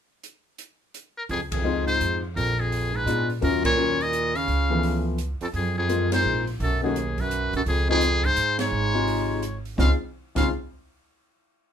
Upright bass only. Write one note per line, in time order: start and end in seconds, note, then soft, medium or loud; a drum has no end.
1.29 1.96 C#2 medium
2.00 2.33 F2 medium
2.36 3.03 A#1 medium
3.06 3.39 A#2 medium
3.42 4.44 D#2 medium
4.47 5.37 C#2 medium
5.41 muted upright bass stroke soft
5.53 6.20 F#2 medium
6.24 6.57 A#1 medium
6.60 7.49 B1 medium
7.52 7.65 B1 medium
7.66 8.33 C#2 medium
8.37 8.70 G#2 medium
8.71 9.74 G#1 medium
9.78 9.91 C#2 medium
10.36 10.48 C#2 loud